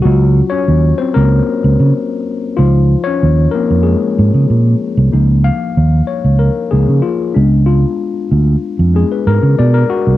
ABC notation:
X:1
M:4/4
L:1/16
Q:1/4=94
K:Db
V:1 name="Tine electric piano"
G3 [Dd]3 [Cc] [B,B]6- [B,B] z2 | F3 [Dd]3 [B,B]2 [A,A]6 z2 | z2 f4 d2 B2 A2 F2 =D2 | F4 z4 A _c B2 =d B G2 |]
V:2 name="Tine electric piano"
[G,DF]16 | [F,Ec]6 [F,CE]2 z8 | [F,B,E]8- [F,B,E]2 [F,B,E]2 z2 [A,_C]2 | z8 [A,_C=D]2 z6 |]
V:3 name="Fingered electric bass" clef=bass
D,,3 z E,,2 z D,,2 z D,, D, z4 | D,,3 z E,,2 z F,,2 z A,, D, B,,2 z C,, | D,,3 z E,,2 z D,,2 z D,, D, z2 D,,2- | D,,2 z2 =D,,2 z F,,2 z A,, _D, _C,2 z =C,, |]